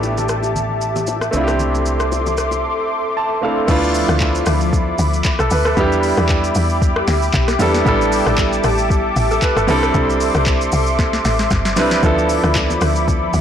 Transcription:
Already playing: A1 A3 B3 D4 E4 G4 E5 A5 D6
0.03 high bongo, shaker
0.18 low bongo, shaker
0.29 cross-stick, shaker
0.43 high bongo, shaker
0.56 low conga, shaker
0.81 shaker
0.96 low bongo, shaker
1.07 high bongo, shaker
1.21 cross-stick, shaker
1.31 C2 A3 C4 D4 A4 C6 D6, low conga, shaker
1.36 E4 F4
1.44 G4
1.48 cross-stick, low bongo, shaker
1.59 low conga, shaker
1.74 low bongo, shaker
1.86 shaker
2.00 cross-stick, shaker
2.12 high bongo, shaker
2.26 low bongo, shaker
2.38 cross-stick, shaker
2.51 high bongo, shaker
3.17 A5
3.41 A3 C4 D4 E4 A4 F5
3.68 D2 F3 A3 B3 D4 E4 F4 E5 B5 D6, kick, crash, shaker
3.84 shaker
3.95 open hi-hat, shaker
4.09 D2, cross-stick, shaker
4.20 kick, clap, shaker
4.35 shaker
4.46 D2, cross-stick, open hi-hat, shaker
4.61 shaker
4.73 kick, shaker
4.99 D2, open hi-hat, shaker
5.13 shaker
5.24 kick, clap, shaker
5.39 B1 A4, cross-stick, shaker
5.51 D2 B4, open hi-hat, shaker
5.65 A4, cross-stick, shaker
5.77 E2 G3 B3 D4 E4 G4, kick, shaker
5.92 shaker
6.03 open hi-hat, shaker
6.17 E2, cross-stick, shaker
6.29 kick, clap, shaker
6.44 shaker
6.55 E2, open hi-hat, shaker
6.70 shaker
6.82 kick, shaker
6.96 cross-stick
7.08 D2, snare, open hi-hat, shaker
7.22 shaker
7.34 B1, kick, clap, shaker
7.48 cross-stick, snare, shaker
7.59 E2 G3 B3 D4 E4 A4, open hi-hat, shaker
7.74 snare, shaker
7.85 A1 G3 B3 D4 E4 A4 A5, kick, shaker
8.01 shaker
8.12 open hi-hat, shaker
8.26 A1, cross-stick, shaker
8.38 kick, clap, shaker
8.53 shaker
8.64 A1, cross-stick, open hi-hat, shaker
8.78 shaker
8.90 kick, shaker
9.16 A1, open hi-hat, shaker
9.31 A4, shaker
9.42 B4, kick, clap, shaker
9.57 G1 A4, cross-stick, shaker
9.67 C2 G3 C4 D4 E4 A4 C6, open hi-hat, shaker
9.83 cross-stick, shaker
9.94 C2, kick, shaker
10.10 shaker
10.21 open hi-hat, shaker
10.35 C2, cross-stick, shaker
10.46 kick, clap, shaker
10.61 shaker
10.72 C2, open hi-hat, shaker
10.87 shaker
10.99 kick, snare, shaker
11.13 snare, shaker
11.25 A1, snare, open hi-hat, shaker
11.39 snare, shaker
11.51 G1, kick, snare, shaker
11.65 snare, shaker
11.76 C2 G3 C4 D4 E4 B4, snare, open hi-hat, shaker
11.91 snare, shaker
12.03 D2 F3 B3 D4 E4 A4 B5, kick, low conga, shaker
12.18 shaker
12.29 open hi-hat, shaker
12.44 D2, cross-stick, shaker
12.55 kick, clap, high bongo, shaker
12.70 low bongo, shaker
12.81 D2, cross-stick, open hi-hat, shaker
12.96 shaker
13.08 kick, low conga, shaker
13.34 D2, open hi-hat, high bongo, shaker

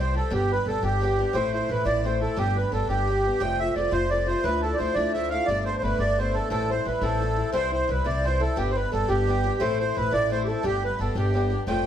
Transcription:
Already playing: C2
0.00 E3 G3 C4 G4 C5
0.14 G3 C4 G4 A4
0.30 G1 G3 B3 D4 G4
0.50 B3 D4 G4 B4
0.66 G1 G3 B3 D4 A4
0.70 G4
0.83 G1 G3 B3 D4 G4
1.01 G3 B3 D4 G4
1.17 B3 D4 G4
1.33 A1 A2 E3 A3 C4 E4 C5
1.53 A3 C4 E4 C5
1.68 A1 E3 A3 C4 E4 B4
1.85 A1 A2 E3 A3 C4 E4 D5
2.04 E3 A3 C4 E4 C5
2.20 A3 C4 E4 A4
2.37 G1 G3 B3 D4 G4
2.56 B3 D4 G4 B4
2.72 G1 G3 B3 D4 G4 A4
2.88 G1 G3 B3 D4 G4
3.07 G3 B3 D4 G4
3.24 B3 D4 G4
3.40 F1 F2 C3 F3 G3 A3 F4 G5
3.58 F3 G3 A3 F4 E5
3.75 F1 F3 G3 A3 F4 D5
3.91 F1 F2 C3 F3 G3 A3 F4 C5
4.10 F3 G3 A3 F4 D5
4.26 F3 G3 A3 F4 C5
4.44 D2 A2 F3 A3 D4 E4 B4
4.62 F3 A3 D4 E4 A4
4.74 C5 D5
4.79 D2 F3 A3 D4 E4
4.94 D2 A2 F3 A3 D4 E4 D5
5.13 F3 A3 D4 E5
5.18 E4
5.30 A3 D4 E4 F5
5.34 F3
5.46 G1 G3 A3 B3 D4 D5
5.65 A3 B3 D4 C5
5.78 C5
5.82 G1 G3 A3 B3 D4 B4
5.99 G1 G3 A3 B3 D4 D5
6.18 G3 A3 B3 D4 C5
6.34 A3 B3 D4 A4
6.50 A1 A2 E3 G3 C4 E4 A4
6.70 G3 C4 E4 C5
6.85 A1 E3 G3 C4 E4 B4
7.01 A1 A2 E3 G3 C4 E4 A4
7.21 E3 G3 C4 E4
7.36 G3 C4 E4
7.52 C2 C3 E3 G3 C4 E4 C5
7.72 G3 C4 E4 C5
7.88 C2 E3 G3 C4 E4 B4
8.04 C2 C3 E3 G3 C4 E4 D5
8.24 E3 G3 C4 E4 C5
8.40 G3 C4 E4 A4
8.56 G1 G3 B3 D4 G4
8.71 C5
8.75 B3 D4 G4 B4
8.92 G1 G3 B3 D4 G4 A4
9.08 G1 G3 B3 D4 G4
9.27 G3 B3 D4 G4
9.44 B3 D4 G4
9.60 A1 A2 A3 C4 E4 A4 C5
9.79 C4 E4 A4 C5
9.95 A1 A3 C4 E4 A4 B4
10.11 A1 A2 A3 C4 E4 A4 D5
10.30 A3 C4 E4 A4 C5
10.44 G4 A4
10.48 C4 E4 A4
10.63 G1 G3 B3 D4 G4
10.83 B3 D4 G4 B4
10.99 G1 G3 B3 D4 G4 A4
11.15 G1 G3 B3 D4 G4
11.34 G3 B3 D4 G4
11.50 B3 D4 G4
11.67 F1 F2 C3 F3 G3 A3 F4 G5

